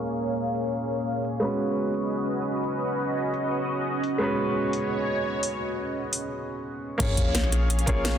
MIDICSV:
0, 0, Header, 1, 6, 480
1, 0, Start_track
1, 0, Tempo, 348837
1, 33, Time_signature, 4, 2, 24, 8
1, 11256, End_track
2, 0, Start_track
2, 0, Title_t, "Analog synth pad"
2, 0, Program_c, 0, 89
2, 0, Note_on_c, 0, 58, 77
2, 0, Note_on_c, 0, 68, 70
2, 0, Note_on_c, 0, 73, 71
2, 0, Note_on_c, 0, 77, 87
2, 1898, Note_off_c, 0, 73, 0
2, 1899, Note_off_c, 0, 68, 0
2, 1900, Note_off_c, 0, 58, 0
2, 1901, Note_off_c, 0, 77, 0
2, 1952, Note_on_c, 0, 75, 86
2, 1954, Note_on_c, 0, 61, 82
2, 1954, Note_on_c, 0, 66, 75
2, 1954, Note_on_c, 0, 71, 73
2, 5755, Note_off_c, 0, 71, 0
2, 5797, Note_on_c, 0, 73, 74
2, 8617, Note_off_c, 0, 75, 0
2, 8618, Note_off_c, 0, 66, 0
2, 8619, Note_off_c, 0, 61, 0
2, 8646, Note_off_c, 0, 73, 0
2, 9633, Note_on_c, 0, 68, 81
2, 9634, Note_on_c, 0, 73, 75
2, 9637, Note_on_c, 0, 77, 89
2, 11256, Note_off_c, 0, 68, 0
2, 11256, Note_off_c, 0, 73, 0
2, 11256, Note_off_c, 0, 77, 0
2, 11256, End_track
3, 0, Start_track
3, 0, Title_t, "Grand piano"
3, 0, Program_c, 1, 0
3, 0, Control_c, 1, 64, 127
3, 0, Note_on_c, 1, 56, 73
3, 0, Note_on_c, 1, 58, 70
3, 0, Note_on_c, 1, 61, 69
3, 0, Note_on_c, 1, 65, 69
3, 0, Note_on_c, 1, 70, 79
3, 1901, Note_off_c, 1, 56, 0
3, 1915, Note_off_c, 1, 58, 0
3, 1922, Note_on_c, 1, 56, 74
3, 1924, Note_off_c, 1, 61, 0
3, 1932, Note_off_c, 1, 65, 0
3, 1939, Note_on_c, 1, 59, 67
3, 1941, Note_off_c, 1, 70, 0
3, 1957, Note_on_c, 1, 61, 71
3, 1972, Control_c, 1, 64, 0
3, 1972, Note_on_c, 1, 66, 68
3, 1990, Note_on_c, 1, 71, 82
3, 2194, Control_c, 1, 64, 127
3, 5735, Note_off_c, 1, 56, 0
3, 5754, Note_off_c, 1, 59, 0
3, 5756, Note_on_c, 1, 56, 77
3, 5766, Note_off_c, 1, 61, 0
3, 5774, Note_off_c, 1, 66, 0
3, 5774, Note_on_c, 1, 59, 66
3, 5783, Note_off_c, 1, 71, 0
3, 5791, Note_on_c, 1, 61, 72
3, 5808, Note_on_c, 1, 66, 69
3, 5826, Note_on_c, 1, 71, 84
3, 9586, Note_off_c, 1, 56, 0
3, 9595, Note_off_c, 1, 59, 0
3, 9598, Note_off_c, 1, 61, 0
3, 9601, Note_on_c, 1, 58, 76
3, 9612, Note_off_c, 1, 66, 0
3, 9619, Note_on_c, 1, 61, 75
3, 9621, Note_off_c, 1, 71, 0
3, 9636, Note_on_c, 1, 65, 68
3, 9651, Control_c, 1, 64, 0
3, 9654, Note_on_c, 1, 68, 73
3, 9670, Note_on_c, 1, 73, 84
3, 9901, Control_c, 1, 64, 127
3, 10788, Note_off_c, 1, 58, 0
3, 10797, Note_off_c, 1, 61, 0
3, 10806, Note_off_c, 1, 65, 0
3, 10815, Note_off_c, 1, 68, 0
3, 10818, Note_on_c, 1, 58, 87
3, 10823, Note_off_c, 1, 73, 0
3, 10826, Note_on_c, 1, 61, 80
3, 10836, Note_on_c, 1, 65, 80
3, 10844, Note_on_c, 1, 68, 77
3, 10852, Note_on_c, 1, 73, 92
3, 11035, Note_off_c, 1, 58, 0
3, 11039, Note_off_c, 1, 61, 0
3, 11044, Note_off_c, 1, 65, 0
3, 11048, Note_off_c, 1, 68, 0
3, 11052, Note_off_c, 1, 73, 0
3, 11256, End_track
4, 0, Start_track
4, 0, Title_t, "808-style bass"
4, 0, Program_c, 2, 38
4, 9631, Note_on_c, 2, 34, 101
4, 11256, Note_off_c, 2, 34, 0
4, 11256, End_track
5, 0, Start_track
5, 0, Title_t, "Sub drop"
5, 0, Program_c, 3, 103
5, 9633, Note_on_c, 3, 60, 80
5, 11256, Note_off_c, 3, 60, 0
5, 11256, End_track
6, 0, Start_track
6, 0, Title_t, "Drums"
6, 753, Note_on_c, 9, 46, 76
6, 891, Note_off_c, 9, 46, 0
6, 1713, Note_on_c, 9, 46, 77
6, 1851, Note_off_c, 9, 46, 0
6, 2673, Note_on_c, 9, 46, 79
6, 2811, Note_off_c, 9, 46, 0
6, 3631, Note_on_c, 9, 46, 79
6, 3769, Note_off_c, 9, 46, 0
6, 4592, Note_on_c, 9, 46, 83
6, 4730, Note_off_c, 9, 46, 0
6, 5553, Note_on_c, 9, 46, 84
6, 5690, Note_off_c, 9, 46, 0
6, 6512, Note_on_c, 9, 46, 77
6, 6649, Note_off_c, 9, 46, 0
6, 7471, Note_on_c, 9, 46, 81
6, 7608, Note_off_c, 9, 46, 0
6, 8431, Note_on_c, 9, 46, 75
6, 8569, Note_off_c, 9, 46, 0
6, 9632, Note_on_c, 9, 36, 120
6, 9632, Note_on_c, 9, 42, 98
6, 9632, Note_on_c, 9, 49, 98
6, 9769, Note_off_c, 9, 36, 0
6, 9769, Note_off_c, 9, 42, 0
6, 9769, Note_off_c, 9, 49, 0
6, 9871, Note_on_c, 9, 36, 60
6, 9871, Note_on_c, 9, 42, 71
6, 10008, Note_off_c, 9, 42, 0
6, 10009, Note_off_c, 9, 36, 0
6, 10109, Note_on_c, 9, 38, 122
6, 10109, Note_on_c, 9, 42, 104
6, 10232, Note_on_c, 9, 40, 49
6, 10247, Note_off_c, 9, 38, 0
6, 10247, Note_off_c, 9, 42, 0
6, 10353, Note_off_c, 9, 40, 0
6, 10353, Note_on_c, 9, 40, 36
6, 10353, Note_on_c, 9, 42, 71
6, 10491, Note_off_c, 9, 40, 0
6, 10491, Note_off_c, 9, 42, 0
6, 10595, Note_on_c, 9, 42, 99
6, 10715, Note_off_c, 9, 42, 0
6, 10715, Note_on_c, 9, 42, 40
6, 10832, Note_on_c, 9, 36, 107
6, 10835, Note_off_c, 9, 42, 0
6, 10835, Note_on_c, 9, 42, 70
6, 10970, Note_off_c, 9, 36, 0
6, 10972, Note_off_c, 9, 42, 0
6, 11075, Note_on_c, 9, 38, 127
6, 11075, Note_on_c, 9, 42, 107
6, 11212, Note_off_c, 9, 38, 0
6, 11212, Note_off_c, 9, 42, 0
6, 11256, End_track
0, 0, End_of_file